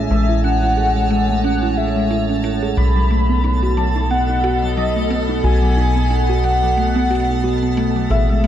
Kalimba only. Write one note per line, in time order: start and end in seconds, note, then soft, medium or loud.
0.11 0.22 G#3 medium
0.29 0.38 E4 medium
0.44 0.51 C#4 medium
0.63 0.71 E4 medium
0.77 0.88 G#4 medium
0.96 1.01 G#3 medium
1.11 1.22 G#3 medium
1.29 1.34 A3 medium
1.44 1.55 C#4 medium
1.63 1.71 E4 medium
1.77 1.88 G#4 medium
1.96 2.05 G#3 medium
2.11 2.22 E4 medium
2.29 2.34 C#4 medium
2.44 2.55 E4 medium
2.63 2.71 G#4 medium
2.77 2.84 F#3 medium
2.96 3.05 F#3 medium
3.11 3.17 A3 medium
3.29 3.38 B3 medium
3.44 3.55 D#4 medium
3.63 3.71 F#4 medium
3.77 3.88 F#3 medium
3.96 4.05 D#4 medium
4.11 4.17 B3 medium
4.29 4.38 D#4 medium
4.44 4.55 F#4 medium
4.63 4.68 F#3 medium
4.77 4.88 F#3 medium
4.96 5.01 A3 medium
5.11 5.22 B3 medium
5.29 5.38 D#4 medium
5.44 5.55 F#4 medium
5.63 5.71 F#3 medium
5.77 5.88 D#4 medium
5.96 6.01 B3 medium
6.10 6.22 D#4 medium
6.29 6.38 F#4 medium
6.44 6.51 F#3 medium
6.62 6.71 F#3 medium
6.77 6.84 A3 medium
6.96 7.05 B3 medium
7.11 7.22 F#4 medium
7.29 7.38 D#4 medium
7.44 7.55 F#4 medium
7.63 7.71 B3 medium
7.77 7.88 A3 medium
7.96 8.05 F#3 medium
8.11 8.22 G#4 medium
8.29 8.34 G#3 medium
8.44 8.47 G#3 medium